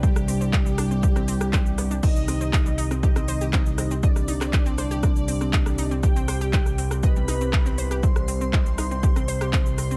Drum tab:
CC |----------------|x---------------|----------------|----------------|
HH |--o---o---o---o-|--o---o---o---o-|--o---o---o---o-|--o---o---o---o-|
SH |xxxxxxxxxxxxxxxx|xxxxxxxxxxxxxxxx|xxxxxxxxxxxxxxxx|xxxxxxxxxxxxxxxx|
CP |----x-------x---|----x-------x---|---xx-------x---|----x-------x---|
SD |-r--r-r--r-r--r-|--r-r--r-r--r-r-|-r-r--r-r--r-r--|r-r--r-r--r-r--r|
BD |o---o---o---o---|o---o---o---o---|o---o---o---o---|o---o---o---o---|

CC |----------------|
HH |--o---o---o---o-|
SH |xxxxxxxxxxxxxxxx|
CP |----x-------x---|
SD |-r--r-r--r-r--r-|
BD |o---o---o---o---|